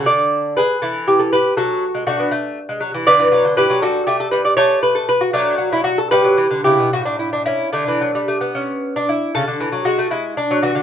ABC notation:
X:1
M:6/8
L:1/16
Q:3/8=78
K:Dlyd
V:1 name="Lute"
[Ad]4 [GB]2 [EA]2 =G A [GB]2 | [FA]4 [DF]2 z6 | [K:D] [Bd]4 [GB]2 [FA]2 G A B d | [Ac]2 B A B F [A,D]2 F E F A |
[GB]4 [EG]2 F D E D [CE]2 | [A,D]6 C3 D E2 | [K:A] A4 F2 E2 D2 F2 |]
V:2 name="Lute" clef=bass
D,6 E,6 | F,3 G, A, B, A,3 G, F, E, | [K:D] D, E, F, D, E, F, G,2 A,2 G,2 | A,6 F,6 |
G, F, E, D, C, B,, A,,6 | D, E, F, G, A, B,6- B, | [K:A] C, D, E, F, G, A, G,3 F, E, D, |]